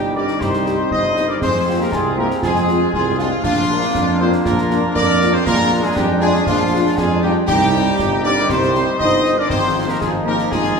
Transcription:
Already playing: tuba G1, euphonium G3, trombone section G3 D#4, woodwind section D#4, trumpet section G4, flute section G5
0.14 french horn section C4 D#4 G4, euphonium D4, woodwind section A#4, trumpet section D5, flute section D6
0.28 snare
0.40 tuba C2, euphonium C4, woodwind section G4, trumpet section C5, flute section C6, concert bass drum, snare
0.53 snare
0.66 french horn section C4 D#4 G4, snare
0.91 tuba G1, euphonium D#4, woodwind section C5, trumpet section D#5, flute section D#6, concert bass drum
1.16 french horn section C4 D#4 G4, snare
1.28 euphonium D4, woodwind section A#4, trumpet section D5, flute section D6
1.40 tuba F2, trombone section G#3 C4, euphonium C4, woodwind section G#4, trumpet section C5, flute section C6, concert bass drum, snare
1.68 french horn section G#3 C4 F4
1.78 euphonium A#3, woodwind section G4, trumpet section A#4, flute section A#5
1.91 tuba C2, euphonium G#3, woodwind section F4, trumpet section G#4, flute section G#5, concert bass drum, snare
2.17 french horn section G#3 C4 F4, euphonium A#3, woodwind section G4, trumpet section A#4, flute section A#5
2.31 snare
2.41 tuba F2, euphonium G#3, woodwind section F4, trumpet section G#4, flute section G#5, concert bass drum, snare
2.56 snare
2.68 french horn section G#3 C4 F4, snare
2.92 tuba C2, euphonium G#3, woodwind section F4, trumpet section G#4, flute section G#5, concert bass drum
3.17 euphonium F3, french horn section G#3 C4 F4, woodwind section D4, trumpet section F4, flute section F5, snare
3.42 tuba A#1, euphonium F3, trombone section A#3 D4, woodwind section D4, trumpet section F4, flute section F5, concert bass drum, snare, crash
3.71 french horn section A#3 D4 F4
3.95 tuba F2, concert bass drum, snare
4.19 french horn section A#3 D4 F4, euphonium C4, woodwind section G#4, trumpet section C5, flute section C6
4.32 snare
4.44 tuba A#1, euphonium A#3, woodwind section F4, trumpet section A#4, flute section A#5, concert bass drum, snare
4.58 snare
4.70 french horn section A#3 D4 F4, snare
4.94 tuba F2, euphonium D4, woodwind section A#4, trumpet section D5, flute section D6, concert bass drum
5.21 french horn section A#3 D4 F4, snare
5.33 euphonium C4, woodwind section G#4, trumpet section C5, flute section C6
5.46 tuba A#1, trombone section G#3 D4, euphonium A#3, woodwind section F4, trumpet section A#4, flute section A#5, concert bass drum, snare
5.70 french horn section G#3 D4 F4
5.83 euphonium G#3, woodwind section F4, trumpet section G#4, flute section G#5
5.96 tuba F2, euphonium G3, woodwind section D#4, trumpet section G4, flute section G5, concert bass drum, snare
6.21 euphonium G#3, french horn section G#3 D4 F4, woodwind section F4, trumpet section G#4, flute section G#5
6.34 snare
6.46 tuba A#1, euphonium F3, woodwind section D4, trumpet section F4, flute section F5, concert bass drum, snare
6.73 french horn section G#3 D4 F4
6.96 tuba F2, euphonium G#3, woodwind section F4, trumpet section G#4, flute section G#5, concert bass drum, snare
7.22 euphonium G3, french horn section G#3 D4 F4, woodwind section D#4, trumpet section G4, flute section G5
7.46 tuba C2, euphonium G3, trombone section G3 D#4, woodwind section D#4, trumpet section G4, flute section G5, concert bass drum, snare, crash
7.73 french horn section G3 C4 D#4
7.99 tuba G1, concert bass drum, snare
8.23 french horn section G3 C4 D#4, euphonium D4, woodwind section A#4, trumpet section D5, flute section D6
8.37 snare
8.49 tuba C2, euphonium C4, woodwind section G4, trumpet section C5, flute section C6, concert bass drum, snare
8.62 snare
8.75 french horn section G3 C4 D#4, snare
8.99 tuba G1, euphonium D#4, woodwind section C5, trumpet section D#5, flute section D#6, concert bass drum
9.25 french horn section G3 C4 D#4, snare
9.37 euphonium D4, woodwind section A#4, trumpet section D5, flute section D6
9.49 tuba G#1, trombone section F3 D#4, euphonium C4, woodwind section G#4, trumpet section C5, flute section C6, concert bass drum, snare
9.77 french horn section F3 C4 D#4
9.88 euphonium A#3, woodwind section G4, trumpet section A#4, flute section A#5
10.00 tuba G#1, euphonium G#3, woodwind section F4, trumpet section G#4, flute section G#5, concert bass drum, snare
10.24 french horn section F3 C4 D#4, euphonium A#3, woodwind section G4, trumpet section A#4, flute section A#5
10.38 snare
10.51 tuba G#1, euphonium G#3, woodwind section F4, trumpet section G#4, flute section G#5, concert bass drum, snare
10.64 snare

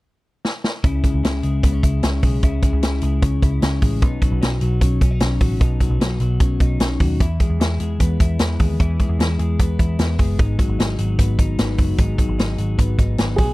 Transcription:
0.45 snare
0.64 snare
0.84 picked electric bass C#2, clean electric guitar C#3 E4, kick, closed hi-hat
1.04 clean electric guitar G#3, kick, closed hi-hat
1.14 picked electric bass C#2
1.24 picked electric bass C#2, clean electric guitar E4, snare, closed hi-hat
1.43 picked electric bass C#2, clean electric guitar G#3, closed hi-hat
1.63 picked electric bass C#2, clean electric guitar B3, kick, closed hi-hat
1.73 clean electric guitar C#4
1.83 picked electric bass C#2, clean electric guitar E4, kick, closed hi-hat
2.03 picked electric bass C#2, clean electric guitar C#4, snare, closed hi-hat
2.22 picked electric bass B1, clean electric guitar G#3, kick, open hi-hat
2.43 picked electric bass C#2, clean electric guitar C#3 E4, kick, closed hi-hat
2.63 clean electric guitar G#3, kick, closed hi-hat
2.73 picked electric bass C#2
2.83 clean electric guitar E4, snare, closed hi-hat
3.01 picked electric bass C#2, clean electric guitar G#3, closed hi-hat
3.22 picked electric bass C#2, clean electric guitar C#4, kick, closed hi-hat
3.42 picked electric bass C#2, clean electric guitar E4, kick, closed hi-hat
3.62 picked electric bass C#2, clean electric guitar C#4, snare, closed hi-hat
3.82 picked electric bass A1, clean electric guitar G#3, kick, open hi-hat
4.02 picked electric bass B1, clean electric guitar B2 D#4, kick, closed hi-hat
4.22 clean electric guitar F#3, kick, closed hi-hat
4.32 picked electric bass B1
4.42 picked electric bass B1, clean electric guitar C#4, snare, closed hi-hat
4.52 clean electric guitar D#4
4.61 picked electric bass B1, clean electric guitar F#3, closed hi-hat
4.81 picked electric bass B1, clean electric guitar C#4, kick, closed hi-hat
5.01 picked electric bass B1, clean electric guitar C#4, kick, closed hi-hat
5.11 clean electric guitar D#4
5.20 picked electric bass B1, clean electric guitar C#4, snare, closed hi-hat
5.40 picked electric bass A1, clean electric guitar F#3, kick, open hi-hat
5.61 picked electric bass B1, clean electric guitar B2 D#4, kick, closed hi-hat
5.80 clean electric guitar F#3, kick, closed hi-hat
5.90 picked electric bass B1
6.00 picked electric bass B1, clean electric guitar C#4, snare, closed hi-hat
6.10 clean electric guitar D#4
6.20 picked electric bass B1, clean electric guitar F#3, closed hi-hat
6.40 picked electric bass B1, clean electric guitar C#4, kick, closed hi-hat
6.60 picked electric bass B1, clean electric guitar D#4, kick, closed hi-hat
6.80 picked electric bass B1, clean electric guitar C#4, snare, closed hi-hat
7.00 picked electric bass D#2, clean electric guitar F#3, kick, open hi-hat
7.20 picked electric bass E2, clean electric guitar E3 E4, kick, closed hi-hat
7.40 clean electric guitar G#3, kick, closed hi-hat
7.50 picked electric bass E2
7.60 picked electric bass E2, clean electric guitar E4, snare, closed hi-hat
7.80 picked electric bass E2, clean electric guitar G#3, closed hi-hat
8.00 picked electric bass E2, clean electric guitar B3, kick, closed hi-hat
8.20 picked electric bass E2, clean electric guitar E4, kick, closed hi-hat
8.39 picked electric bass E2, clean electric guitar B3, snare, closed hi-hat
8.59 picked electric bass D#2, clean electric guitar G#3, kick, open hi-hat
8.80 picked electric bass E2, clean electric guitar E3 E4, kick, closed hi-hat
9.00 clean electric guitar G#3, kick, closed hi-hat
9.09 picked electric bass E2
9.19 picked electric bass E2, clean electric guitar E4, snare, closed hi-hat
9.39 picked electric bass E2, clean electric guitar G#3, closed hi-hat
9.59 picked electric bass E2, clean electric guitar B3, kick, closed hi-hat
9.79 picked electric bass E2, clean electric guitar E4, kick, closed hi-hat
9.99 picked electric bass E2, clean electric guitar B3, snare, closed hi-hat
10.18 picked electric bass F#1, clean electric guitar G#3, kick, open hi-hat
10.39 picked electric bass G#1, clean electric guitar G#2 D#4, kick, closed hi-hat
10.59 clean electric guitar F#3, kick, closed hi-hat
10.69 picked electric bass G#1
10.79 picked electric bass G#1, clean electric guitar D#4, snare, closed hi-hat
10.98 picked electric bass G#1, clean electric guitar F#3, closed hi-hat
11.19 picked electric bass G#1, clean electric guitar B3, kick, closed hi-hat
11.39 picked electric bass G#1, clean electric guitar D#4, kick, closed hi-hat
11.59 picked electric bass G#1, clean electric guitar B3, snare, closed hi-hat
11.78 picked electric bass F#1, clean electric guitar F#3, kick, open hi-hat
11.98 picked electric bass G#1, clean electric guitar G#2 D#4, kick, closed hi-hat
12.18 clean electric guitar F#3, kick, closed hi-hat
12.29 picked electric bass G#1
12.38 picked electric bass G#1, clean electric guitar D#4, snare, closed hi-hat
12.58 picked electric bass G#1, clean electric guitar F#3, closed hi-hat
12.78 picked electric bass G#1, clean electric guitar B3, kick, closed hi-hat
12.98 picked electric bass G#1, clean electric guitar D#4, kick, closed hi-hat
13.18 picked electric bass G#1, clean electric guitar B3, snare, closed hi-hat
13.36 picked electric bass B1, clean electric guitar F#3, upright piano G#4, kick, open hi-hat

